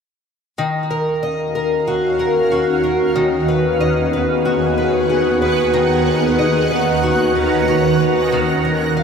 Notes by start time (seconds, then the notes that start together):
0.58 D#2 D#3 C#4 F#4 F5
0.91 A#4
1.23 D#5
1.55 A#4
1.87 F#4
2.19 A#4
2.51 F#4
2.84 A#4
3.16 D#3 B3 G#4 F#5
3.48 B4
3.81 D#5
4.13 B4
4.45 F#4
4.78 B4
5.09 F#4
5.42 B4
5.74 D#3 C#4 A#5
6.06 B4
6.39 D#5
6.71 B4
7.03 F#4
7.35 B4
7.68 F#4
8.00 B4
8.32 D#3
8.65 A#4
8.97 F5